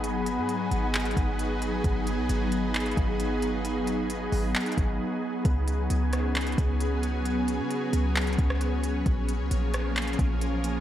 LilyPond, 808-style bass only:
\new Staff \with { instrumentName = "808-style bass" } { \clef bass \time 4/4 \key cis \mixolydian \tempo 4 = 133 gis,,8. gis,8. gis,,4 gis,,4. | gis,,8. b,,16 gis,,4. gis,,4.~ | gis,,4. gis,,8 r8 gis,,8 r4 | cis,4 cis,4. cis,4.~ |
cis,8. cis8. cis,4 cis,4. | ais,,8. cis,16 ais,,4. ais,,4. | }